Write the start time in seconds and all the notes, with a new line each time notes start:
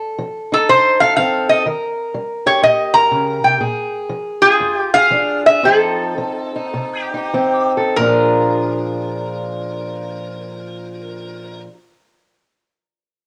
Already playing: F2 A4
0.19 F3
0.52 D#4 A4
0.69 C3 C5
1.00 A4 F5
1.16 F3 C4 F5
1.49 A4 D#5
1.66 D#3 A#4
2.14 G3
2.46 G4 C#5
2.62 A#2 D#5
2.94 A#4 A#5
3.11 C#3
3.44 C3 G5
3.60 A#2 G#4
4.10 F3
4.42 F4 G#4
4.60 F2
4.77 G4
4.94 G#4 F5
5.11 F3 D4
5.46 G#4 E5
5.63 F2 F3 C4 D#4 A4
6.18 F3
6.56 D#4
6.74 C3
7.01 G4
7.14 D#4
7.33 F3 C4
7.77 A4
7.96 A#2 F3 A#4
8.01 D4 F4
8.05 G#4